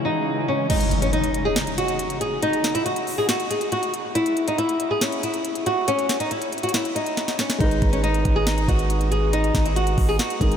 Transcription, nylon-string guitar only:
0, 0, Header, 1, 2, 480
1, 0, Start_track
1, 0, Key_signature, 5, "minor"
1, 0, Tempo, 431655
1, 777, Time_signature, 4, 2, 24, 8
1, 11752, End_track
2, 0, Start_track
2, 0, Title_t, "Nylon-string guitar"
2, 0, Program_c, 0, 24
2, 53, Note_on_c, 0, 63, 83
2, 506, Note_off_c, 0, 63, 0
2, 538, Note_on_c, 0, 61, 82
2, 760, Note_off_c, 0, 61, 0
2, 774, Note_on_c, 0, 63, 98
2, 1114, Note_off_c, 0, 63, 0
2, 1135, Note_on_c, 0, 61, 82
2, 1247, Note_off_c, 0, 61, 0
2, 1255, Note_on_c, 0, 63, 82
2, 1594, Note_off_c, 0, 63, 0
2, 1614, Note_on_c, 0, 68, 80
2, 1726, Note_off_c, 0, 68, 0
2, 1734, Note_on_c, 0, 63, 78
2, 1958, Note_off_c, 0, 63, 0
2, 1977, Note_on_c, 0, 66, 82
2, 2428, Note_off_c, 0, 66, 0
2, 2454, Note_on_c, 0, 68, 79
2, 2678, Note_off_c, 0, 68, 0
2, 2696, Note_on_c, 0, 63, 106
2, 3035, Note_off_c, 0, 63, 0
2, 3054, Note_on_c, 0, 64, 76
2, 3167, Note_off_c, 0, 64, 0
2, 3175, Note_on_c, 0, 66, 78
2, 3514, Note_off_c, 0, 66, 0
2, 3537, Note_on_c, 0, 68, 77
2, 3648, Note_off_c, 0, 68, 0
2, 3659, Note_on_c, 0, 66, 73
2, 3880, Note_off_c, 0, 66, 0
2, 3897, Note_on_c, 0, 68, 72
2, 4119, Note_off_c, 0, 68, 0
2, 4138, Note_on_c, 0, 66, 82
2, 4360, Note_off_c, 0, 66, 0
2, 4616, Note_on_c, 0, 64, 98
2, 4955, Note_off_c, 0, 64, 0
2, 4980, Note_on_c, 0, 63, 84
2, 5090, Note_off_c, 0, 63, 0
2, 5095, Note_on_c, 0, 64, 81
2, 5434, Note_off_c, 0, 64, 0
2, 5457, Note_on_c, 0, 68, 74
2, 5568, Note_off_c, 0, 68, 0
2, 5578, Note_on_c, 0, 61, 75
2, 5800, Note_off_c, 0, 61, 0
2, 5819, Note_on_c, 0, 64, 66
2, 6269, Note_off_c, 0, 64, 0
2, 6298, Note_on_c, 0, 66, 85
2, 6520, Note_off_c, 0, 66, 0
2, 6536, Note_on_c, 0, 61, 111
2, 6875, Note_off_c, 0, 61, 0
2, 6895, Note_on_c, 0, 63, 84
2, 7007, Note_off_c, 0, 63, 0
2, 7018, Note_on_c, 0, 64, 86
2, 7356, Note_off_c, 0, 64, 0
2, 7377, Note_on_c, 0, 66, 79
2, 7488, Note_off_c, 0, 66, 0
2, 7497, Note_on_c, 0, 64, 85
2, 7719, Note_off_c, 0, 64, 0
2, 7733, Note_on_c, 0, 63, 82
2, 8186, Note_off_c, 0, 63, 0
2, 8219, Note_on_c, 0, 61, 84
2, 8440, Note_off_c, 0, 61, 0
2, 8455, Note_on_c, 0, 63, 99
2, 8794, Note_off_c, 0, 63, 0
2, 8814, Note_on_c, 0, 61, 84
2, 8927, Note_off_c, 0, 61, 0
2, 8934, Note_on_c, 0, 63, 86
2, 9274, Note_off_c, 0, 63, 0
2, 9294, Note_on_c, 0, 68, 83
2, 9407, Note_off_c, 0, 68, 0
2, 9415, Note_on_c, 0, 63, 77
2, 9638, Note_off_c, 0, 63, 0
2, 9657, Note_on_c, 0, 66, 81
2, 10108, Note_off_c, 0, 66, 0
2, 10134, Note_on_c, 0, 68, 78
2, 10358, Note_off_c, 0, 68, 0
2, 10377, Note_on_c, 0, 63, 101
2, 10715, Note_off_c, 0, 63, 0
2, 10735, Note_on_c, 0, 64, 80
2, 10847, Note_off_c, 0, 64, 0
2, 10855, Note_on_c, 0, 66, 77
2, 11194, Note_off_c, 0, 66, 0
2, 11216, Note_on_c, 0, 68, 75
2, 11327, Note_off_c, 0, 68, 0
2, 11337, Note_on_c, 0, 66, 74
2, 11559, Note_off_c, 0, 66, 0
2, 11577, Note_on_c, 0, 68, 73
2, 11752, Note_off_c, 0, 68, 0
2, 11752, End_track
0, 0, End_of_file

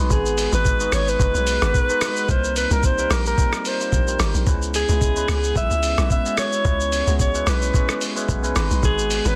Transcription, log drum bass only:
0, 0, Header, 1, 2, 480
1, 0, Start_track
1, 0, Key_signature, 4, "minor"
1, 0, Tempo, 545455
1, 91, Time_signature, 4, 2, 24, 8
1, 8232, End_track
2, 0, Start_track
2, 0, Title_t, "Log drum bass"
2, 0, Program_c, 0, 39
2, 91, Note_on_c, 0, 32, 117
2, 420, Note_off_c, 0, 32, 0
2, 462, Note_on_c, 0, 32, 102
2, 770, Note_off_c, 0, 32, 0
2, 810, Note_on_c, 0, 32, 89
2, 1023, Note_off_c, 0, 32, 0
2, 1052, Note_on_c, 0, 30, 102
2, 1168, Note_off_c, 0, 30, 0
2, 1182, Note_on_c, 0, 35, 97
2, 1395, Note_off_c, 0, 35, 0
2, 1423, Note_on_c, 0, 32, 94
2, 1519, Note_off_c, 0, 32, 0
2, 2013, Note_on_c, 0, 36, 100
2, 2341, Note_off_c, 0, 36, 0
2, 2383, Note_on_c, 0, 36, 103
2, 2691, Note_off_c, 0, 36, 0
2, 2730, Note_on_c, 0, 34, 96
2, 2943, Note_off_c, 0, 34, 0
2, 3453, Note_on_c, 0, 34, 93
2, 3665, Note_off_c, 0, 34, 0
2, 3690, Note_on_c, 0, 32, 104
2, 3807, Note_off_c, 0, 32, 0
2, 3822, Note_on_c, 0, 34, 85
2, 3918, Note_off_c, 0, 34, 0
2, 3930, Note_on_c, 0, 37, 109
2, 4260, Note_off_c, 0, 37, 0
2, 4302, Note_on_c, 0, 37, 100
2, 4611, Note_off_c, 0, 37, 0
2, 4651, Note_on_c, 0, 37, 100
2, 4863, Note_off_c, 0, 37, 0
2, 4889, Note_on_c, 0, 35, 104
2, 5007, Note_off_c, 0, 35, 0
2, 5021, Note_on_c, 0, 37, 87
2, 5234, Note_off_c, 0, 37, 0
2, 5261, Note_on_c, 0, 35, 92
2, 5358, Note_off_c, 0, 35, 0
2, 5850, Note_on_c, 0, 37, 117
2, 6180, Note_off_c, 0, 37, 0
2, 6222, Note_on_c, 0, 37, 99
2, 6531, Note_off_c, 0, 37, 0
2, 6570, Note_on_c, 0, 35, 97
2, 6783, Note_off_c, 0, 35, 0
2, 7291, Note_on_c, 0, 35, 97
2, 7504, Note_off_c, 0, 35, 0
2, 7531, Note_on_c, 0, 32, 100
2, 7648, Note_off_c, 0, 32, 0
2, 7661, Note_on_c, 0, 35, 87
2, 7758, Note_off_c, 0, 35, 0
2, 7771, Note_on_c, 0, 32, 115
2, 8100, Note_off_c, 0, 32, 0
2, 8142, Note_on_c, 0, 32, 105
2, 8232, Note_off_c, 0, 32, 0
2, 8232, End_track
0, 0, End_of_file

